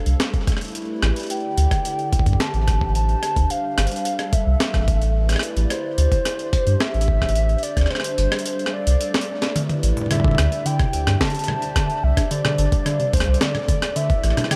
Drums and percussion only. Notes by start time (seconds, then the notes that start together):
0.06 closed hi-hat
0.20 snare, closed hi-hat
0.34 kick, closed hi-hat
0.47 kick, cross-stick, closed hi-hat
0.52 cross-stick
0.57 cross-stick
0.61 closed hi-hat
0.65 closed hi-hat
0.68 closed hi-hat
0.72 closed hi-hat
0.75 closed hi-hat
0.78 closed hi-hat
0.82 closed hi-hat
0.85 closed hi-hat
1.03 cross-stick
1.16 closed hi-hat
1.20 closed hi-hat
1.23 closed hi-hat
1.27 closed hi-hat
1.30 closed hi-hat
1.33 closed hi-hat
1.37 closed hi-hat
1.40 closed hi-hat
1.58 closed hi-hat
1.71 kick, cross-stick, closed hi-hat
1.85 closed hi-hat
1.99 closed hi-hat
2.13 kick, closed hi-hat
2.19 kick
2.26 kick, closed hi-hat
2.33 kick
2.40 snare, closed hi-hat
2.54 closed hi-hat
2.68 kick, cross-stick, closed hi-hat
2.81 kick
2.95 closed hi-hat
3.09 closed hi-hat
3.23 cross-stick, closed hi-hat
3.36 kick, closed hi-hat
3.50 closed hi-hat
3.78 cross-stick, closed hi-hat
3.87 closed hi-hat
3.91 closed hi-hat
3.96 closed hi-hat
4.05 closed hi-hat
4.19 cross-stick, closed hi-hat
4.33 kick, closed hi-hat
4.60 snare, closed hi-hat
4.74 kick, cross-stick, closed hi-hat
4.88 kick, closed hi-hat
5.02 closed hi-hat
5.29 cross-stick, closed hi-hat
5.33 cross-stick
5.36 cross-stick
5.39 cross-stick, closed hi-hat
5.57 closed hi-hat
5.70 cross-stick, closed hi-hat
5.98 closed hi-hat
6.12 kick, closed hi-hat
6.25 cross-stick, closed hi-hat
6.39 closed hi-hat
6.53 kick, closed hi-hat
6.67 closed hi-hat
6.80 cross-stick, snare
6.94 closed hi-hat
7.01 closed hi-hat
7.08 kick
7.22 kick, cross-stick
7.29 closed hi-hat
7.35 closed hi-hat
7.49 closed hi-hat
7.58 closed hi-hat
7.63 closed hi-hat
7.68 closed hi-hat
7.77 kick, cross-stick, closed hi-hat
7.81 cross-stick
7.86 cross-stick
7.91 cross-stick
7.95 cross-stick
8.00 cross-stick
8.04 closed hi-hat
8.18 closed hi-hat
8.32 cross-stick
8.39 closed hi-hat
8.46 closed hi-hat
8.59 closed hi-hat
8.66 cross-stick
8.87 closed hi-hat
9.01 closed hi-hat
9.14 snare, closed hi-hat
9.21 closed hi-hat
9.42 snare, closed hi-hat
9.56 closed hi-hat, mid tom
9.69 closed hi-hat, mid tom
9.83 closed hi-hat
9.97 closed hi-hat, mid tom
10.02 mid tom
10.06 mid tom
10.11 cross-stick, closed hi-hat, mid tom
10.15 mid tom
10.20 mid tom
10.24 kick, mid tom
10.28 mid tom
10.31 mid tom
10.35 cross-stick, closed hi-hat, mid tom
10.52 closed hi-hat
10.66 closed hi-hat
10.79 kick, cross-stick, closed hi-hat
10.93 closed hi-hat
11.07 cross-stick, closed hi-hat
11.21 kick, snare, closed hi-hat
11.25 closed hi-hat
11.30 closed hi-hat
11.35 closed hi-hat
11.39 closed hi-hat
11.44 closed hi-hat
11.48 cross-stick, mid tom
11.62 closed hi-hat
11.76 kick, cross-stick, closed hi-hat
11.90 closed hi-hat
12.17 kick, cross-stick, closed hi-hat
12.31 closed hi-hat
12.45 cross-stick, mid tom
12.58 closed hi-hat
12.72 kick, closed hi-hat
12.86 cross-stick, closed hi-hat
13.00 closed hi-hat
13.13 kick, closed hi-hat
13.17 cross-stick, closed hi-hat
13.20 closed hi-hat
13.24 closed hi-hat
13.34 closed hi-hat
13.41 snare, closed hi-hat
13.55 cross-stick, closed hi-hat, mid tom
13.68 kick, closed hi-hat
13.82 cross-stick, closed hi-hat
13.96 closed hi-hat
14.10 kick, closed hi-hat
14.24 cross-stick, closed hi-hat
14.30 cross-stick
14.37 cross-stick, closed hi-hat, mid tom
14.44 cross-stick
14.51 cross-stick, closed hi-hat